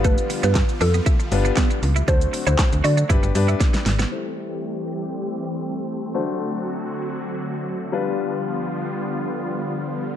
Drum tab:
HH |xxoxxxoxxxoxxxox|xxoxxxoxxxoxxxox|----------------|----------------|
SH |xxxxxxxxxxxxxxxx|xxxxxxxxxxxxxxxx|----------------|----------------|
CP |----x-------x---|----x-----------|----------------|----------------|
SD |----o-------o---|----o-------oooo|----------------|----------------|
BD |o---o---o---o---|o---o---o---o---|----------------|----------------|

HH |----------------|
SH |----------------|
CP |----------------|
SD |----------------|
BD |----------------|